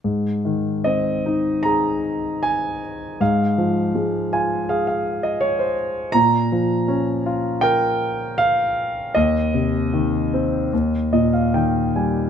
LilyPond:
<<
  \new Staff \with { instrumentName = "Grand piano" } { \time 4/4 \key aes \major \tempo 4 = 78 << { r4 ees''4 bes''4 aes''4 | f''4 r2. | bes''2 g''4 f''4 | ees''2.~ ees''8 r8 | } \\ { r1 | r4. aes''8 f''16 f''8 ees''16 des''16 c''8. | r1 | r2 r8 ees''16 f''16 g''8 aes''8 | } >> }
  \new Staff \with { instrumentName = "Grand piano" } { \clef bass \time 4/4 \key aes \major aes,8 ees8 c'8 ees'8 aes'2 | aes,8 f8 aes8 f'8 aes'2 | bes,8 f8 des'8 f'8 bes'2 | ees,8 c8 ees8 c'8 ees,8 bes,8 ees8 g8 | }
>>